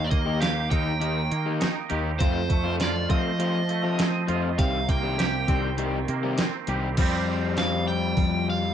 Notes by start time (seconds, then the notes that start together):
Already playing: D#2 D#3
0.04 D5
0.11 D#2 A#3 D#5, kick, closed hi-hat
0.26 D#3 A#3 D#4 G4
0.40 G4 F5, muted overdriven electric guitar stroke, snare, closed hi-hat
0.70 D#2 D#3 A#3 D#4 G4 G5, kick, closed hi-hat
1.00 D#3 A#3 D#4 G4, closed hi-hat
1.31 D#3 A#3, closed hi-hat
1.46 D#3 A#3 D#4 G4
1.60 D#4, snare, closed hi-hat
1.89 D#2 D#3 A#3 D#4 G4, closed hi-hat
2.19 F2 F3 A3 C4 F4 C5, kick, closed hi-hat
2.50 F2 A3, kick, closed hi-hat
2.64 F3 A3 C4 F4
2.80 F4 D5, muted overdriven electric guitar stroke, snare, closed hi-hat
2.96 snare
3.09 F3 A3 C4 F4 D#5, kick, closed hi-hat
3.39 F3 A3 C4 F4, closed hi-hat
3.69 A3, closed hi-hat
3.83 F3 A3 C4 F4
3.99 C4, snare, closed hi-hat
4.27 F2 F3 A3 C4 F4, closed hi-hat
4.58 C2 C3 D#3 G3 C4 G4 F5, kick, closed hi-hat
4.89 C2 A#3 G5, kick, closed hi-hat
5.03 D#3 G3 C4 G4
5.18 G4, muted overdriven electric guitar stroke, snare, closed hi-hat
5.48 C2 D#3 G3 C4 G4, kick, closed hi-hat
5.78 D#3 G3 C4 G4, closed hi-hat
6.08 C3 A#3, closed hi-hat
6.23 D#3 G3 C4 G4
6.38 C4, snare, closed hi-hat
6.67 C2 D#3 G3 C4 G4, closed hi-hat
6.97 F2 F3 G3 C4 G4, kick, open hi-hat, crash
7.02 G4
7.57 F5, snare, open hi-hat
7.88 G5
8.17 F2, kick, open hi-hat
8.50 F5